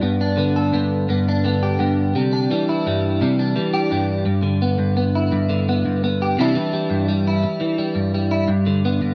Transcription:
0.00 0.72 G2 medium
0.00 0.37 B3 medium
0.00 0.21 D4 medium
0.00 0.56 G4 medium
0.21 1.28 D4 medium
0.37 1.43 D3 medium
0.37 0.72 B3 medium
0.56 1.62 A4 medium
0.73 1.08 G2 medium
0.73 1.09 B3 soft
1.09 1.78 G2 medium
1.09 1.44 B3 medium
1.29 2.18 D4 medium
1.44 2.50 D3 medium
1.44 1.78 B3 medium
1.63 2.69 G4 medium
1.79 2.13 G2 medium
1.79 2.13 B3 soft
2.15 2.51 C3 medium
2.15 2.50 G3 medium
2.33 3.38 D4 medium
2.51 3.55 E3 medium
2.51 2.86 G3 medium
2.69 3.73 E4 medium
2.86 3.21 G2 medium
2.86 3.21 G3 medium
3.21 3.57 C3 medium
3.21 3.55 G3 medium
3.39 4.25 D4 medium
3.56 4.25 E3 medium
3.56 3.90 G3 medium
3.74 4.25 G4 medium
3.91 4.25 G2 medium
3.91 4.61 G3 medium
4.26 4.77 G2 medium
4.43 5.48 D3 medium
4.62 4.96 B3 medium
4.78 5.31 G2 medium
4.97 5.68 B3 medium
5.15 6.21 E4 medium
5.32 5.84 G2 medium
5.49 6.38 D3 medium
5.69 6.03 B3 medium
5.85 6.36 G2 medium
6.04 6.37 B3 medium
6.22 6.41 G4 medium
6.39 6.56 C3 medium
6.39 6.54 E3 medium
6.39 6.73 G3 medium
6.39 9.14 D4 medium
6.39 7.26 E4 medium
6.55 7.59 E3 medium
6.73 7.08 G3 medium
6.90 7.43 G2 medium
7.08 7.78 G3 medium
7.27 8.30 E4 medium
7.44 muted clean electric guitar stroke medium
7.61 8.47 E3 medium
7.78 8.14 G3 medium
7.95 8.46 G2 medium
8.14 8.85 G3 medium
8.31 8.49 E4 medium
8.48 9.01 G2 medium
8.67 9.14 D3 medium
8.85 9.14 B3 medium
9.02 9.14 G2 medium

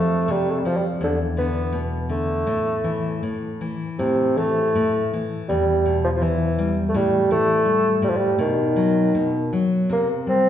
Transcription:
0.00 0.96 F2 medium
0.00 0.27 F3 soft
0.00 0.33 A3 medium
0.28 0.63 C3 soft
0.28 0.52 G3 medium
0.51 0.60 A3 medium
0.59 0.68 G3 medium
0.65 0.99 F3 soft
0.65 0.78 F3 medium
0.76 0.83 G3 medium
1.01 2.42 E2 medium
1.01 1.19 D3 medium
1.37 1.71 D3 soft
1.37 1.80 B3 medium
1.73 2.08 B2 soft
2.09 2.45 D3 soft
2.09 3.19 A3 medium
2.47 3.22 A2 medium
2.84 3.21 E3 soft
3.23 3.59 A2 soft
3.61 3.97 E3 soft
3.99 4.74 A2 medium
3.99 4.39 C3 medium
4.37 4.74 E3 soft
4.37 5.12 A3 medium
4.75 5.11 A2 soft
5.13 5.48 E3 soft
5.48 6.90 E2 medium
5.48 5.99 G3 medium
5.86 6.20 B2 soft
6.04 6.09 F3 medium
6.15 6.24 F3 medium
6.22 6.57 E3 soft
6.22 6.76 E3 medium
6.59 6.93 G3 medium
6.89 6.98 A3 medium
6.94 8.01 A2 medium
6.94 7.31 G3 medium
7.31 7.65 E3 soft
7.31 7.99 A3 loud
7.65 8.01 G3 soft
8.02 8.38 A2 soft
8.02 8.11 G3 medium
8.09 8.18 F3 medium
8.17 8.39 G3 medium
8.38 9.14 B2 medium
8.38 9.48 D#3 medium
8.76 9.12 F#3 soft
9.15 9.51 B2 soft
9.53 9.89 F#3 soft
9.89 10.49 C3 medium
9.89 10.08 A#3 medium
10.27 10.49 G3 soft
10.27 10.49 C4 medium

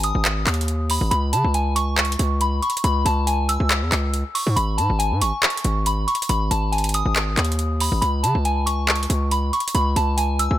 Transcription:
0.00 0.13 G#1 loud
0.00 closed hi-hat medium
0.04 0.86 D#6 medium
0.15 0.45 G#1 loud
0.25 clap loud
0.25 closed hi-hat medium
0.47 0.99 D#2 loud
0.47 clap medium
0.47 closed hi-hat medium
0.54 closed hi-hat medium
0.61 closed hi-hat medium
0.68 closed hi-hat medium
0.90 1.10 B5 medium
0.90 open hi-hat medium
1.01 1.11 G#1 loud
1.11 1.35 C#2 loud
1.11 1.31 B5 loud
1.11 closed hi-hat medium
1.33 1.44 C#3 loud
1.33 1.52 A5 medium
1.33 closed hi-hat medium
1.44 2.16 C#2 loud
1.54 1.74 G#5 medium
1.54 closed hi-hat medium
1.76 2.37 C#6 medium
1.76 closed hi-hat medium
1.98 clap loud
1.98 closed hi-hat soft
2.05 closed hi-hat medium
2.12 closed hi-hat medium
2.19 2.61 C#2 loud
2.19 closed hi-hat medium
2.41 2.61 B5 medium
2.41 closed hi-hat medium
2.62 2.82 C#6 medium
2.62 closed hi-hat soft
2.70 closed hi-hat medium
2.77 closed hi-hat medium
2.84 3.05 C#2 loud
2.84 3.04 B5 loud
2.84 closed hi-hat medium
3.05 3.58 C#2 loud
3.05 3.25 A5 medium
3.05 closed hi-hat medium
3.27 3.47 G#5 medium
3.27 closed hi-hat medium
3.49 4.31 E6 medium
3.49 closed hi-hat medium
3.60 3.83 C#2 loud
3.70 clap loud
3.70 closed hi-hat medium
3.82 3.91 E2 loud
3.92 4.24 C#2 loud
3.92 clap medium
3.92 closed hi-hat medium
4.14 closed hi-hat medium
4.35 4.54 C#6 medium
4.35 open hi-hat medium
4.47 4.56 G#2 loud
4.56 4.80 G#1 loud
4.56 4.76 B5 loud
4.56 closed hi-hat medium
4.78 4.89 G#2 loud
4.78 4.97 A5 medium
4.78 closed hi-hat medium
4.90 5.13 G#1 loud
4.99 5.19 G#5 medium
4.99 closed hi-hat medium
5.11 5.23 G#2 loud
5.21 5.32 G#1 loud
5.21 5.82 C#6 medium
5.21 closed hi-hat medium
5.43 clap loud
5.43 closed hi-hat soft
5.50 closed hi-hat medium
5.57 closed hi-hat medium
5.64 6.06 G#1 loud
5.64 closed hi-hat medium
5.86 6.06 B5 medium
5.86 closed hi-hat medium
6.08 6.27 C#6 medium
6.08 closed hi-hat soft
6.15 closed hi-hat medium
6.22 closed hi-hat medium
6.29 6.50 G#1 loud
6.29 6.49 B5 medium
6.29 closed hi-hat medium
6.51 7.03 G#1 loud
6.51 6.70 A5 medium
6.51 closed hi-hat medium
6.72 6.92 G#5 medium
6.72 closed hi-hat soft
6.78 closed hi-hat medium
6.84 closed hi-hat medium
6.89 closed hi-hat medium
6.94 7.77 D#6 medium
6.94 closed hi-hat loud
7.06 7.36 G#1 loud
7.16 clap loud
7.16 closed hi-hat medium
7.37 7.90 D#2 loud
7.37 clap medium
7.37 closed hi-hat medium
7.45 closed hi-hat medium
7.52 closed hi-hat medium
7.59 closed hi-hat medium
7.80 8.00 B5 medium
7.80 open hi-hat medium
7.92 8.02 G#1 loud
8.02 8.25 C#2 loud
8.02 8.21 B5 loud
8.02 closed hi-hat medium
8.23 8.34 C#3 loud
8.23 8.43 A5 medium
8.23 closed hi-hat medium
8.35 9.07 C#2 loud
8.45 8.65 G#5 medium
8.45 closed hi-hat medium
8.66 9.27 C#6 medium
8.66 closed hi-hat loud
8.88 clap loud
8.88 closed hi-hat soft
8.96 closed hi-hat medium
9.03 closed hi-hat medium
9.10 9.51 C#2 loud
9.10 closed hi-hat medium
9.31 9.51 B5 medium
9.31 closed hi-hat medium
9.53 9.73 C#6 medium
9.53 closed hi-hat soft
9.60 closed hi-hat medium
9.68 closed hi-hat medium
9.75 9.95 C#2 loud
9.75 9.94 B5 loud
9.75 closed hi-hat medium
9.96 10.49 C#2 loud
9.96 10.16 A5 medium
9.96 closed hi-hat medium
10.17 10.37 G#5 medium
10.17 closed hi-hat medium
10.39 10.58 E6 medium
10.39 closed hi-hat medium
10.51 10.58 C#2 loud

